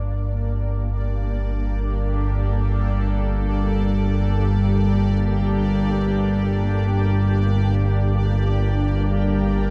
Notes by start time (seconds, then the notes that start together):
Already playing: G1 G2 A#3 D4 G4 D5
0.61 A4
7.60 A#4